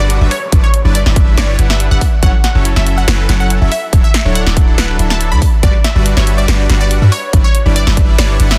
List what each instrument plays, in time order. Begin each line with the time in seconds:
Already playing: 808-style bass G1, analog polysynth G3 D4 F#4 B4 F#5, downlifter
0.00 synth pluck D5
0.10 closed hi-hat
0.21 808-style bass G1, analog polysynth G3 D4 F#4 B4 E5
0.31 synth pluck C#5, open hi-hat
0.52 808-style bass G1, analog polysynth G3 D4 E4 B4 D5, kick, closed hi-hat
0.64 synth pluck C#5
0.74 closed hi-hat
0.85 808-style bass G1, analog polysynth G3 D4 E4 B4 D5
0.95 synth pluck D5, closed hi-hat
1.06 808-style bass G1, analog polysynth G3 D4 E4 B4 E5, snare
1.16 kick, closed hi-hat
1.38 808-style bass G1, analog polysynth G3 D4 E4 B4 C#5, synth pluck D5, snare, closed hi-hat
1.59 808-style bass G1, analog polysynth G3 D4 E4 B4 F#5, closed hi-hat
1.70 synth pluck E5, snare
1.80 closed hi-hat
1.91 808-style bass G1, analog polysynth G3 D4 E4 B4 E5, synth pluck F#5
2.01 kick, open hi-hat
2.23 808-style bass F#1, analog polysynth F#3 C#4 E4 A4 C#5, synth pluck F#5, kick, closed hi-hat
2.44 synth pluck F#5, snare, closed hi-hat
2.55 808-style bass F#1, analog polysynth F#3 C#4 E4 A4 C#5
2.65 closed hi-hat
2.76 808-style bass F#1, analog polysynth F#3 C#4 E4 A4 E5, synth pluck E5, snare
2.87 closed hi-hat
2.98 synth pluck F#5
3.08 808-style bass F#1, analog polysynth F#3 C#4 E4 A4 B4, snare, closed hi-hat
3.29 808-style bass F#1, analog polysynth F#3 C#4 E4 A4 F#5, snare, closed hi-hat
3.40 synth pluck F#5
3.50 closed hi-hat
3.61 808-style bass F#1, analog polysynth F#3 C#4 E4 A4 E5
3.72 synth pluck E5, open hi-hat
3.93 808-style bass D1, analog polysynth F#3 D4 E4 A4 C#5, kick, closed hi-hat
4.04 synth pluck E5
4.14 snare, closed hi-hat
4.25 808-style bass D1, analog polysynth F#3 D4 E4 A4 C#5
4.35 synth pluck F#5, closed hi-hat
4.47 808-style bass D1, analog polysynth F#3 D4 E4 A4 D5, snare
4.57 kick, closed hi-hat
4.78 808-style bass D1, analog polysynth F#3 D4 E4 A4 B4, synth pluck F#5, snare, closed hi-hat
4.99 808-style bass D1, analog polysynth F#3 D4 E4 A4 E5, closed hi-hat
5.10 synth pluck A5, snare
5.21 closed hi-hat
5.32 808-style bass D2, analog polysynth F#3 D4 E4 A4 D5, synth pluck B5
5.42 kick, open hi-hat
5.63 808-style bass G1, analog polysynth G3 D4 F#4 B4 D5, synth pluck D5, kick, closed hi-hat
5.84 synth pluck E5, snare, closed hi-hat
5.96 808-style bass G1, analog polysynth G3 D4 F#4 B4 D5
6.06 closed hi-hat
6.17 808-style bass G1, analog polysynth G3 D4 F#4 B4 E5, synth pluck C#5, snare
6.27 closed hi-hat
6.38 synth pluck D5
6.48 808-style bass G1, analog polysynth G3 D4 F#4 B4 D5, snare, closed hi-hat
6.69 808-style bass G1, analog polysynth G3 D4 F#4 B4 F#5, snare, closed hi-hat
6.81 synth pluck D5
6.91 closed hi-hat
7.02 808-style bass G2, analog polysynth G3 D4 F#4 B4 E5
7.12 synth pluck C#5, open hi-hat
7.33 808-style bass G1, analog polysynth G3 D4 E4 B4 D5, kick, closed hi-hat
7.44 synth pluck C#5
7.55 closed hi-hat
7.66 808-style bass G1, analog polysynth G3 D4 E4 B4 D5
7.76 synth pluck D5, closed hi-hat
7.87 808-style bass G1, analog polysynth G3 D4 E4 B4 E5, snare
7.97 kick, closed hi-hat
8.18 808-style bass G1, analog polysynth G3 D4 E4 B4 C#5, synth pluck D5, snare, closed hi-hat
8.40 808-style bass G1, analog polysynth G3 D4 E4 B4 F#5, closed hi-hat
8.51 synth pluck E5, snare